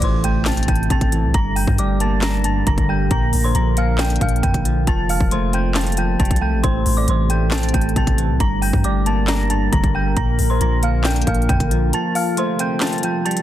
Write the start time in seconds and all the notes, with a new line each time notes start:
Already playing: A2 C3 A3 E4 A4, impact
0.01 A1 E3 C5 C6, closed hi-hat
0.24 A3 G5 G6, closed hi-hat
0.45 A#1 C4 A5 A6, snare, clap, closed hi-hat
0.52 closed hi-hat
0.57 closed hi-hat
0.63 closed hi-hat
0.68 A1 A2 G5 G6, kick, closed hi-hat
0.76 closed hi-hat
0.83 closed hi-hat
0.90 A1 C3 A5 A6, kick, closed hi-hat
1.01 A1, kick, closed hi-hat
1.12 E3, closed hi-hat
1.23 C2
1.34 G1 G2 D3 A#3 G4 A#4 A#5 A#6, kick, closed hi-hat
1.56 G5 G6, open hi-hat
1.67 G2, kick
1.78 G1 G3 D5 D6, closed hi-hat
2.00 A#3 A5 A6, closed hi-hat
2.22 D4 A#5 A#6, snare, clap, closed hi-hat
2.44 G2 A5 A6, closed hi-hat
2.66 F1 D3 A#5 A#6, kick, closed hi-hat
2.78 G1, kick, closed hi-hat
2.89 G3 G5 G6
3.11 A#1 A#2 F4 A#5 A#6, kick, closed hi-hat
3.33 A#1, open hi-hat
3.44 C5 C6
3.55 A#1 F3 A#5 A#6, closed hi-hat
3.77 A#3 F5 F6, closed hi-hat
3.98 D4 G5 G6, snare, clap, closed hi-hat
4.05 closed hi-hat
4.10 closed hi-hat
4.16 closed hi-hat
4.21 A#1 A#2 F5 F6, kick, closed hi-hat
4.29 closed hi-hat
4.36 closed hi-hat
4.43 F2 D3 G5 G6, kick, closed hi-hat
4.54 A#1, kick, closed hi-hat
4.65 F3, closed hi-hat
4.87 F1 C3 F3 G3 A4 A5 A6, kick, closed hi-hat
5.09 F5 F6, open hi-hat
5.20 E1, kick
5.31 F1 A3 C5 C6, closed hi-hat
5.53 C4 G5 G6, closed hi-hat
5.75 F4 A5 A6, snare, clap, closed hi-hat
5.81 closed hi-hat
5.87 closed hi-hat
5.92 closed hi-hat
5.97 F3 G5 G6, closed hi-hat
6.19 F1 G3 A5 A6, kick, closed hi-hat
6.25 closed hi-hat
6.31 C2, kick, closed hi-hat
6.36 closed hi-hat
6.41 A3 G5 G6
6.53 A1
6.63 A1 A2 A3 E4 C5 C6, kick, closed hi-hat
6.86 A1, open hi-hat
6.97 D5 D6
7.07 A1 E3 C5 C6, closed hi-hat
7.30 A3 G5 G6, closed hi-hat
7.51 A#1 C4 A5 A6, snare, clap, closed hi-hat
7.58 closed hi-hat
7.63 closed hi-hat
7.69 closed hi-hat
7.74 A1 A2 G5 G6, kick, closed hi-hat
7.81 closed hi-hat
7.89 closed hi-hat
7.96 A1 C3 A5 A6, kick, closed hi-hat
8.07 A1, kick, closed hi-hat
8.18 E3, closed hi-hat
8.29 C2
8.40 G1 G2 D3 A#3 G4 A#4 A#5 A#6, kick, closed hi-hat
8.62 G5 G6, open hi-hat
8.73 G2, kick
8.84 G1 G3 D5 D6, closed hi-hat
9.06 A#3 A5 A6, closed hi-hat
9.27 D4 A#5 A#6, snare, clap, closed hi-hat
9.50 G2 A5 A6, closed hi-hat
9.72 F1 D3 A#5 A#6, kick, closed hi-hat
9.84 G1, kick, closed hi-hat
9.95 G3 G5 G6
10.17 A#1 A#2 F4 A#5 A#6, kick, closed hi-hat
10.39 A#1, open hi-hat
10.50 C5 C6
10.61 A#1 F3 A#5 A#6, closed hi-hat
10.83 A#3 F5 F6, closed hi-hat
11.04 D4 G5 G6, snare, clap, closed hi-hat
11.11 closed hi-hat
11.16 closed hi-hat
11.22 closed hi-hat
11.27 A#1 A#2 F5 F6, kick, closed hi-hat
11.35 closed hi-hat
11.42 closed hi-hat
11.49 F2 D3 G5 G6, kick, closed hi-hat
11.60 A#1, kick, closed hi-hat
11.71 F3, closed hi-hat
11.93 C3 F3 G3 A4 A5 A6, closed hi-hat
12.15 F5 F6, open hi-hat
12.37 A3 C5 C6, closed hi-hat
12.59 C4 G5 G6, closed hi-hat
12.81 F4 A5 A6, snare, clap, closed hi-hat
12.87 closed hi-hat
12.93 closed hi-hat
12.98 closed hi-hat
13.03 F3 G5 G6, closed hi-hat
13.25 G3 A5 A6, closed hi-hat
13.31 closed hi-hat
13.37 closed hi-hat